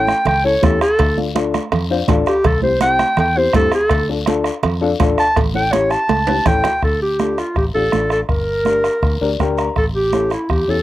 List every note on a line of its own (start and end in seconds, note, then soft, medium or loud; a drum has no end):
0.00 0.12 A1 loud
0.00 0.26 G5 loud
0.07 bombo rim medium
0.07 high conga medium
0.07 short guiro medium
0.25 0.56 C#2 loud
0.25 0.45 G5 medium
0.25 bombo rim medium
0.25 cowbell medium
0.25 low conga medium
0.25 long guiro medium
0.44 0.51 C#4 medium
0.44 0.51 E4 medium
0.44 0.51 A4 medium
0.44 0.66 C#5 medium
0.44 high conga soft
0.62 0.78 E2 medium
0.62 0.82 C#4 medium
0.62 0.82 E4 medium
0.62 0.82 G4 medium
0.62 0.81 A4 medium
0.62 bombo low medium
0.62 bombo rim medium
0.62 cowbell medium
0.62 high conga medium
0.62 short guiro medium
0.81 1.17 A4 loud
0.81 bombo rim medium
0.81 short guiro medium
0.99 1.58 D2 loud
0.99 bombo low medium
0.99 bombo rim medium
0.99 cowbell loud
0.99 high conga soft
0.99 long guiro medium
1.17 1.24 D4 medium
1.17 1.24 F4 medium
1.17 1.24 A4 medium
1.17 high conga medium
1.35 1.55 D4 medium
1.35 1.55 F4 medium
1.35 1.55 A4 medium
1.35 bombo rim medium
1.35 cowbell medium
1.35 high conga loud
1.35 short guiro medium
1.54 bombo rim medium
1.54 high conga medium
1.54 short guiro medium
1.72 2.02 F2 loud
1.72 bombo rim medium
1.72 cowbell medium
1.72 low conga medium
1.72 long guiro medium
1.90 1.97 D4 medium
1.90 1.97 F4 medium
1.90 1.97 C5 loud
1.90 high conga soft
2.08 2.23 A1 loud
2.08 2.28 D4 medium
2.08 2.28 F4 medium
2.08 2.28 A4 loud
2.08 bombo low medium
2.08 bombo rim medium
2.08 cowbell medium
2.08 high conga loud
2.08 low conga medium
2.08 low timbale medium
2.08 short guiro medium
2.26 2.48 G4 loud
2.26 bombo rim medium
2.26 short guiro medium
2.44 3.03 C2 loud
2.44 2.62 A4 medium
2.44 bombo low medium
2.44 bombo rim medium
2.44 cowbell medium
2.44 high conga soft
2.44 low conga medium
2.44 long guiro medium
2.62 2.69 C4 medium
2.62 2.70 E4 medium
2.62 2.70 G4 medium
2.62 2.81 C5 medium
2.62 high conga medium
2.81 3.01 C4 medium
2.81 3.02 E4 medium
2.81 3.01 G4 medium
2.81 3.17 G5 loud
2.81 bombo rim medium
2.81 cowbell medium
2.81 high conga loud
2.81 short guiro medium
2.99 bombo rim medium
2.99 high conga medium
2.99 short guiro medium
3.17 3.47 E2 loud
3.17 3.39 G5 medium
3.17 bombo rim medium
3.17 cowbell medium
3.17 low conga medium
3.17 long guiro medium
3.36 3.43 C4 medium
3.36 3.43 E4 medium
3.36 3.43 G4 medium
3.36 3.55 C5 medium
3.36 high conga soft
3.53 3.69 G2 loud
3.53 3.73 C4 medium
3.53 3.73 E4 medium
3.53 3.74 G4 medium
3.53 3.73 A4 loud
3.53 bombo low medium
3.53 bombo rim medium
3.53 cowbell medium
3.53 high conga medium
3.53 short guiro medium
3.72 4.09 A4 loud
3.72 bombo rim medium
3.72 short guiro medium
3.89 4.49 D2 loud
3.89 bombo low medium
3.89 bombo rim medium
3.89 cowbell loud
3.89 high conga soft
3.89 long guiro medium
4.09 4.16 D4 medium
4.09 4.16 F4 medium
4.09 4.16 A4 medium
4.26 4.47 D4 medium
4.26 4.47 F4 medium
4.26 4.47 A4 medium
4.26 bombo rim medium
4.26 cowbell medium
4.26 high conga loud
4.26 short guiro medium
4.44 bombo rim medium
4.44 short guiro medium
4.63 4.93 F2 loud
4.63 bombo rim medium
4.63 cowbell loud
4.63 low conga medium
4.63 long guiro medium
4.81 4.88 D4 medium
4.81 4.89 F4 medium
4.81 4.89 A4 loud
4.81 high conga soft
5.00 5.15 A1 medium
5.00 5.19 D4 medium
5.00 5.20 F4 medium
5.00 5.20 A4 loud
5.00 bombo low medium
5.00 bombo rim medium
5.00 cowbell medium
5.00 high conga medium
5.00 short guiro medium
5.18 5.37 A5 loud
5.18 bombo rim medium
5.18 short guiro medium
5.36 5.95 A1 loud
5.36 bombo low medium
5.36 bombo rim medium
5.36 cowbell medium
5.36 high conga soft
5.36 low conga medium
5.36 long guiro medium
5.54 5.61 C#4 medium
5.54 5.61 E4 medium
5.54 5.62 A4 medium
5.54 5.74 G5 medium
5.54 high conga medium
5.72 5.93 C#4 medium
5.72 5.93 E4 medium
5.72 5.93 G4 medium
5.72 5.92 C#5 medium
5.72 bombo rim medium
5.72 cowbell medium
5.72 high conga loud
5.72 short guiro medium
5.91 6.49 A5 loud
5.91 bombo rim medium
5.91 short guiro medium
6.09 6.39 C#2 loud
6.09 bombo rim medium
6.09 cowbell loud
6.09 high conga loud
6.09 long guiro medium
6.27 6.35 C#4 medium
6.27 6.35 E4 medium
6.27 6.35 G4 medium
6.27 high conga medium
6.27 high timbale medium
6.45 6.61 A1 loud
6.45 6.65 C#4 medium
6.45 6.66 E4 medium
6.45 6.65 A4 medium
6.45 6.82 G5 loud
6.45 bombo low medium
6.45 bombo rim medium
6.45 cowbell medium
6.45 low conga loud
6.45 short guiro medium
6.64 bombo rim medium
6.64 low conga medium
6.64 low timbale medium
6.64 short guiro medium
6.82 7.41 D2 medium
6.82 7.00 A4 medium
6.82 bombo low medium
6.82 bombo rim medium
6.82 high conga soft
6.82 long guiro medium
7.02 7.41 G4 medium
7.19 7.39 D4 medium
7.19 7.39 F4 soft
7.19 7.39 A4 medium
7.19 bombo rim medium
7.19 high conga medium
7.19 short guiro medium
7.38 7.57 F4 medium
7.38 bombo rim medium
7.38 short guiro medium
7.56 7.71 A1 loud
7.56 7.65 G4 medium
7.56 bombo low medium
7.56 bombo rim medium
7.56 high conga soft
7.56 long guiro medium
7.74 7.89 A1 medium
7.74 7.81 D4 medium
7.74 7.81 F4 medium
7.74 7.81 G4 medium
7.74 8.08 A4 medium
7.92 8.22 A1 medium
7.92 8.18 D4 medium
7.92 8.18 F4 medium
7.92 8.18 A4 medium
7.92 bombo rim medium
7.92 high conga medium
7.92 short guiro medium
8.10 8.20 A4 medium
8.10 bombo rim medium
8.10 short guiro medium
8.29 8.88 G1 medium
8.29 9.35 A#4 medium
8.29 bombo low medium
8.29 bombo rim medium
8.29 high conga soft
8.29 long guiro medium
8.65 8.85 D4 medium
8.65 8.85 G4 medium
8.65 8.85 A#4 medium
8.65 bombo rim medium
8.65 high conga medium
8.65 short guiro medium
8.84 bombo rim medium
8.84 short guiro medium
9.02 9.17 D2 loud
9.02 bombo low medium
9.02 bombo rim medium
9.02 high conga soft
9.02 long guiro medium
9.21 9.36 D2 medium
9.21 9.27 D4 medium
9.21 9.28 G4 medium
9.21 9.28 A#4 medium
9.21 9.38 D5 medium
9.39 9.69 D2 medium
9.39 9.65 D4 medium
9.39 9.65 G4 medium
9.39 9.66 A#4 loud
9.39 9.57 G5 medium
9.39 bombo low medium
9.39 bombo rim medium
9.39 high conga medium
9.39 short guiro medium
9.57 9.74 A#5 medium
9.57 bombo rim medium
9.57 short guiro medium
9.76 10.35 A1 loud
9.76 9.86 A4 medium
9.76 bombo low medium
9.76 bombo rim medium
9.76 high conga soft
9.76 long guiro medium
9.95 10.29 G4 loud
10.12 10.32 C#4 medium
10.12 10.32 E4 medium
10.12 10.32 A4 medium
10.12 bombo rim medium
10.12 high conga medium
10.12 short guiro medium
10.30 10.52 E4 medium
10.30 bombo rim medium
10.30 short guiro medium
10.49 10.64 E2 medium
10.49 10.71 G4 medium
10.49 bombo low medium
10.49 bombo rim medium
10.49 high conga soft
10.49 long guiro medium
10.68 10.82 E2 medium
10.68 10.74 C#4 medium
10.68 10.74 E4 medium
10.68 10.75 G4 medium
10.68 10.82 A4 medium